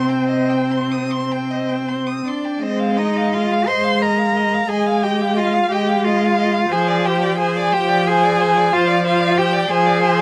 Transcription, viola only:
0.00 2.21 C4 soft
2.62 3.56 G#3 medium
3.69 4.57 G#3 soft
4.69 5.58 G#3 soft
5.69 6.59 G#3 medium
6.70 7.60 F3 medium
7.73 8.61 F3 medium
8.74 9.58 F3 medium
9.70 10.21 F3 medium

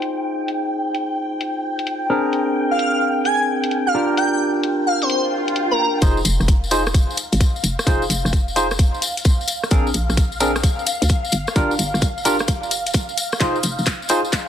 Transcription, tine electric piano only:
0.00 2.08 D#4 medium
0.00 2.08 F4 medium
0.00 2.08 G#4 medium
0.00 2.08 C5 medium
2.10 3.93 C4 medium
2.10 3.93 D4 medium
2.10 3.93 G#4 medium
2.10 3.93 A#4 medium
3.94 6.00 D4 medium
3.94 6.00 F4 medium
3.94 6.00 G4 medium
3.94 6.00 A#4 medium
6.02 6.18 D#4 medium
6.02 6.18 F4 medium
6.02 6.18 G#4 medium
6.02 6.18 C5 medium
6.71 6.81 D#4 medium
6.71 6.81 F4 medium
6.71 6.81 G#4 medium
6.71 6.81 C5 loud
7.87 8.02 D#4 medium
7.87 8.02 F4 medium
7.87 8.02 G#4 medium
7.87 8.02 C5 medium
8.56 8.66 D#4 medium
8.56 8.66 F4 medium
8.56 8.66 G#4 medium
8.56 8.66 C5 loud
9.71 9.87 C4 medium
9.71 9.87 D4 medium
9.71 9.87 G#4 medium
9.71 9.87 A#4 medium
10.40 10.51 C4 medium
10.40 10.51 D4 medium
10.40 10.51 G#4 medium
10.40 10.51 A#4 loud
11.56 11.72 D4 medium
11.56 11.72 F4 medium
11.56 11.72 G4 medium
11.56 11.72 A#4 loud
12.25 12.35 D4 medium
12.25 12.35 F4 medium
12.25 12.35 G4 medium
12.25 12.35 A#4 loud
13.41 13.56 D#4 medium
13.41 13.56 F4 medium
13.41 13.56 G#4 medium
13.41 13.56 C5 medium
14.10 14.20 D#4 medium
14.10 14.20 F4 medium
14.10 14.20 G#4 medium
14.10 14.20 C5 loud

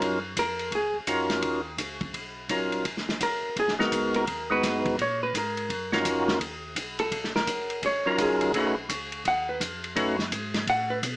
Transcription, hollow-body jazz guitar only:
0.39 0.71 A#4 loud
0.75 0.95 G#4 medium
3.23 3.55 A#4 medium
3.60 3.72 G#4 medium
4.16 4.48 A#4 medium
4.52 4.96 B4 medium
5.02 5.22 C#5 medium
5.23 5.35 B4 medium
5.37 5.90 A#4 medium
7.00 7.32 A4 medium
7.36 7.80 A#4 medium
7.86 8.07 C#5 medium
8.07 8.19 A#4 medium
8.21 8.74 G#4 medium
9.28 9.49 F#5 medium
9.49 9.61 B4 medium
10.70 10.91 F#5 loud
10.90 10.98 B4 medium

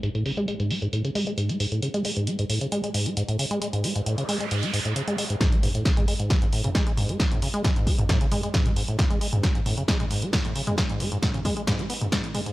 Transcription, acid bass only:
0.03 0.10 G#2 medium
0.15 0.24 A2 medium
0.26 0.32 C#3 medium
0.37 0.46 G#3 loud
0.48 0.54 G#3 medium
0.60 0.72 G#2 medium
0.70 0.80 G#3 medium
0.82 0.88 G#2 medium
0.93 1.03 A2 medium
1.05 1.10 C#3 medium
1.15 1.25 G#3 loud
1.27 1.33 G#3 medium
1.38 1.51 G#2 medium
1.49 1.58 G#3 medium
1.60 1.66 G#2 medium
1.72 1.81 A2 medium
1.82 1.89 C#3 medium
1.94 2.03 G#3 loud
2.05 2.11 G#3 medium
2.17 2.29 G#2 medium
2.27 2.37 G#3 medium
2.39 2.45 G#2 medium
2.50 2.59 A2 medium
2.61 2.67 C#3 medium
2.72 2.82 G#3 loud
2.84 2.90 G#3 medium
2.94 3.08 G#2 medium
3.06 3.15 G#3 medium
3.17 3.23 G#2 medium
3.29 3.37 A2 medium
3.39 3.46 C#3 medium
3.51 3.60 G#3 loud
3.62 3.68 G#3 medium
3.73 3.85 G#2 medium
3.84 3.94 G#3 medium
3.96 4.01 G#2 medium
4.06 4.16 A2 medium
4.18 4.24 C#3 medium
4.29 4.38 G#3 loud
4.40 4.46 G#3 medium
4.51 4.64 G#2 medium
4.63 4.72 G#3 medium
4.74 4.80 G#2 medium
4.85 4.94 A2 medium
4.96 5.02 C#3 medium
5.08 5.16 G#3 loud
5.18 5.25 G#3 medium
5.30 5.36 G#2 medium
5.41 5.54 G#2 medium
5.52 5.61 G#3 medium
5.63 5.69 G#2 medium
5.75 5.84 A2 medium
5.85 5.92 C#3 medium
5.97 6.06 G#3 loud
6.08 6.14 G#3 medium
6.19 6.32 G#2 medium
6.30 6.40 G#3 medium
6.42 6.48 G#2 medium
6.53 6.62 A2 medium
6.64 6.70 C#3 medium
6.75 6.85 G#3 loud
6.87 6.93 G#3 medium
6.97 7.11 G#2 medium
7.09 7.18 G#3 medium
7.20 7.26 G#2 medium
7.31 7.40 A2 medium
7.42 7.49 C#3 medium
7.54 7.63 G#3 loud
7.65 7.71 G#3 medium
7.76 7.88 G#2 medium
7.87 7.97 G#3 medium
7.99 8.05 G#2 medium
8.09 8.19 A2 medium
8.21 8.27 C#3 medium
8.32 8.41 G#3 loud
8.43 8.49 G#3 medium
8.54 8.67 G#2 medium
8.66 8.75 G#3 medium
8.76 8.83 G#2 medium
8.88 8.97 A2 medium
8.99 9.05 C#3 medium
9.10 9.19 G#3 loud
9.21 9.28 G#3 medium
9.33 9.45 G#2 medium
9.43 9.53 G#3 medium
9.55 9.61 G#2 medium
9.66 9.75 A2 medium
9.77 9.83 C#3 medium
9.88 9.98 G#3 loud
10.00 10.06 G#3 medium
10.11 10.24 G#2 medium
10.22 10.31 G#3 medium
10.33 10.40 G#2 medium
10.45 10.54 A2 medium
10.55 10.62 C#3 medium
10.67 10.76 G#3 loud
10.78 10.84 G#3 medium
10.89 11.02 G#2 medium
11.00 11.10 G#3 medium
11.12 11.18 G#2 medium
11.23 11.32 A2 medium
11.34 11.40 C#3 medium
11.45 11.55 G#3 loud
11.57 11.63 G#3 medium
11.67 11.81 G#2 medium
11.79 11.88 G#3 medium
11.90 11.94 B3 medium
12.01 12.07 G#2 medium
12.12 12.25 G#2 medium
12.24 12.33 A2 medium
12.34 12.41 G#3 loud
12.46 12.53 G#2 medium

